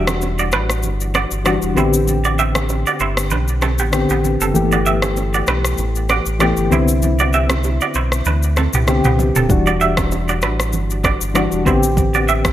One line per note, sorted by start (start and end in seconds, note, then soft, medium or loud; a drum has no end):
0.00 0.54 E1 loud
0.00 0.62 E3 medium
0.00 0.62 G3 medium
0.00 0.62 D4 medium
0.00 0.63 F#4 loud
0.07 cross-stick loud
0.07 low bongo medium
0.07 shaker medium
0.21 high bongo medium
0.21 shaker medium
0.39 0.48 F#4 medium
0.39 0.48 D5 medium
0.39 shaker medium
0.52 0.85 A1 medium
0.52 0.64 D4 medium
0.52 0.64 B4 medium
0.52 cross-stick loud
0.52 shaker medium
0.70 cross-stick medium
0.70 shaker medium
0.83 1.26 G1 medium
0.83 low conga medium
0.83 shaker medium
1.00 shaker medium
1.14 1.26 F#4 medium
1.14 1.26 D5 medium
1.14 cross-stick medium
1.14 low bongo medium
1.14 shaker medium
1.31 1.59 G1 medium
1.31 shaker medium
1.44 1.76 E3 medium
1.44 1.76 G3 medium
1.44 1.77 D4 medium
1.44 1.77 F#4 loud
1.44 1.57 F#4 medium
1.44 1.57 D5 medium
1.44 cross-stick medium
1.44 high bongo medium
1.44 shaker medium
1.62 1.75 E1 medium
1.62 shaker medium
1.75 2.85 A1 loud
1.75 2.78 D3 medium
1.75 2.79 B3 medium
1.75 2.79 C4 medium
1.75 1.88 E4 medium
1.75 2.79 G4 loud
1.75 1.88 C5 medium
1.75 low conga medium
1.75 shaker medium
1.93 shaker medium
2.07 low conga medium
2.07 shaker medium
2.24 2.34 F#4 medium
2.24 2.34 D5 medium
2.24 low bongo medium
2.24 shaker medium
2.39 2.50 G4 medium
2.39 2.49 E5 medium
2.39 shaker medium
2.55 cross-stick loud
2.55 low bongo medium
2.55 shaker medium
2.69 high bongo medium
2.69 shaker medium
2.86 2.96 F#4 medium
2.86 2.96 D5 medium
2.86 shaker medium
3.00 3.33 G1 medium
3.00 3.12 E4 medium
3.00 3.11 C5 medium
3.00 shaker medium
3.17 cross-stick loud
3.17 shaker medium
3.30 3.81 B1 loud
3.30 3.43 D4 medium
3.30 3.42 B4 medium
3.30 low conga medium
3.30 shaker medium
3.48 shaker medium
3.62 3.74 C4 medium
3.62 3.73 A4 medium
3.62 cross-stick medium
3.62 low bongo medium
3.62 shaker medium
3.78 4.06 A1 medium
3.78 3.89 B3 medium
3.78 3.88 G4 medium
3.78 shaker medium
3.92 4.44 D3 medium
3.92 4.45 B3 medium
3.92 4.45 C4 medium
3.92 4.45 G4 medium
3.92 cross-stick loud
3.92 high bongo medium
3.92 shaker medium
4.09 4.37 A1 medium
4.09 4.20 B3 medium
4.09 4.19 G4 medium
4.09 shaker medium
4.24 low conga medium
4.24 shaker medium
4.41 4.53 F#1 medium
4.41 4.51 C4 medium
4.41 4.50 A4 medium
4.41 shaker loud
4.54 5.44 G1 loud
4.54 5.57 E3 medium
4.54 5.57 A3 medium
4.54 4.62 A#3 medium
4.54 5.58 G4 loud
4.54 low conga medium
4.54 shaker medium
4.72 4.82 F#4 medium
4.72 4.81 D5 medium
4.72 low bongo medium
4.72 shaker medium
4.86 4.97 G4 medium
4.86 4.97 E5 medium
4.86 shaker medium
5.02 cross-stick loud
5.02 low bongo medium
5.02 shaker medium
5.17 high bongo medium
5.17 shaker medium
5.34 5.43 F#4 medium
5.34 5.43 D5 medium
5.34 shaker medium
5.47 5.75 B1 medium
5.47 5.59 D4 medium
5.47 5.59 B4 medium
5.47 cross-stick loud
5.47 shaker medium
5.65 cross-stick medium
5.65 shaker medium
5.78 6.20 A1 medium
5.78 low conga medium
5.78 shaker medium
5.95 shaker medium
6.09 6.21 F#4 medium
6.09 6.21 D5 medium
6.09 cross-stick medium
6.09 low bongo medium
6.09 shaker medium
6.26 6.53 A1 medium
6.26 shaker medium
6.39 6.71 E3 medium
6.39 6.71 A3 medium
6.39 6.70 B3 medium
6.39 6.72 G4 loud
6.39 6.52 G4 medium
6.39 6.52 D5 medium
6.39 cross-stick medium
6.39 high bongo medium
6.39 shaker medium
6.57 6.69 G1 medium
6.57 shaker medium
6.70 7.80 C2 loud
6.70 7.73 D3 medium
6.70 7.73 B3 medium
6.70 7.74 C4 medium
6.70 7.74 E4 loud
6.70 6.83 E4 medium
6.70 6.83 C5 medium
6.70 low conga medium
6.70 shaker medium
6.88 shaker loud
7.02 low conga medium
7.02 shaker medium
7.19 7.29 F#4 medium
7.19 7.28 D5 medium
7.19 low bongo medium
7.19 shaker medium
7.33 7.45 G4 medium
7.33 7.44 E5 medium
7.33 shaker medium
7.50 cross-stick loud
7.50 high bongo medium
7.50 low bongo medium
7.50 shaker medium
7.64 high bongo medium
7.64 shaker medium
7.81 7.91 F#4 medium
7.81 7.90 D5 medium
7.81 shaker medium
7.94 8.22 B1 medium
7.94 8.07 E4 medium
7.94 8.06 C5 medium
7.94 shaker medium
8.12 cross-stick medium
8.12 shaker medium
8.25 8.68 D2 loud
8.25 8.38 D4 medium
8.25 8.37 B4 medium
8.25 low conga medium
8.25 shaker medium
8.43 shaker medium
8.56 8.69 C4 medium
8.56 8.68 A4 medium
8.56 cross-stick medium
8.56 low bongo medium
8.56 shaker medium
8.73 9.01 C2 medium
8.73 8.84 B3 medium
8.73 8.83 G4 medium
8.73 mid tom medium
8.73 shaker medium
8.87 9.39 D3 medium
8.87 9.39 B3 medium
8.87 9.40 C4 medium
8.87 9.40 G4 loud
8.87 cross-stick medium
8.87 high bongo medium
8.87 shaker medium
9.04 9.32 C2 medium
9.04 9.15 B3 medium
9.04 9.14 G4 medium
9.04 mid tom medium
9.04 shaker medium
9.19 high bongo medium
9.19 low conga medium
9.19 shaker medium
9.36 9.48 D1 medium
9.36 9.45 C4 medium
9.36 9.45 A4 medium
9.36 mid tom medium
9.36 shaker loud
9.49 10.44 E1 loud
9.49 10.52 E3 medium
9.49 10.52 G3 medium
9.49 10.52 D4 medium
9.49 10.53 F#4 medium
9.49 kick loud
9.49 low conga medium
9.49 shaker medium
9.67 9.76 F#4 medium
9.67 9.76 D5 medium
9.67 low bongo medium
9.67 shaker medium
9.81 9.92 G4 medium
9.81 9.92 E5 medium
9.81 shaker medium
9.97 kick loud
9.97 cross-stick loud
9.97 low bongo medium
9.97 shaker medium
10.11 high bongo medium
10.11 shaker medium
10.29 10.38 F#4 medium
10.29 10.38 D5 medium
10.29 shaker medium
10.42 10.75 A1 medium
10.42 10.54 D4 medium
10.42 10.54 B4 medium
10.42 cross-stick medium
10.42 shaker medium
10.60 cross-stick medium
10.60 shaker medium
10.73 11.15 G1 loud
10.73 low conga medium
10.73 shaker medium
10.90 shaker medium
11.04 11.16 F#4 medium
11.04 11.15 D5 medium
11.04 kick medium
11.04 cross-stick medium
11.04 low bongo medium
11.04 shaker medium
11.21 11.48 G1 medium
11.21 shaker medium
11.34 11.65 E3 medium
11.34 11.66 G3 medium
11.34 11.66 D4 medium
11.34 11.67 F#4 medium
11.34 11.47 F#4 medium
11.34 11.46 D5 medium
11.34 cross-stick medium
11.34 high bongo medium
11.34 shaker medium
11.52 11.64 E1 medium
11.52 shaker medium
11.65 12.53 A1 loud
11.65 12.53 D3 medium
11.65 12.53 B3 medium
11.65 12.53 C4 medium
11.65 11.78 E4 medium
11.65 12.53 G4 loud
11.65 11.77 C5 medium
11.65 kick medium
11.65 low conga medium
11.65 shaker medium
11.83 shaker medium
11.97 kick loud
11.97 low conga medium
11.97 shaker medium
12.14 12.24 F#4 medium
12.14 12.23 D5 medium
12.14 low bongo medium
12.14 shaker soft
12.28 12.40 G4 medium
12.28 12.39 E5 medium
12.28 shaker medium
12.45 kick loud
12.45 cross-stick loud
12.45 low bongo medium
12.45 shaker medium